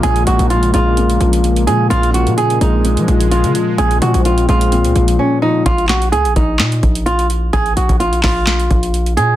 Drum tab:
HH |xxxxxxx-xxxxxxx-|xxxxxxx-xxxxxxx-|xxxxxxxxxxxx----|xxxxxxx-xxxxxxx-|
CP |----------------|----------------|----------------|--x-----x-------|
SD |----------------|----------------|----------------|--o-----o-------|
BD |----------------|----------------|----------------|o-----o---o-----|

HH |xxxxxxo-xxxxxxx-|
CP |------x-x-------|
SD |------o-o-------|
BD |o--o--o---o-----|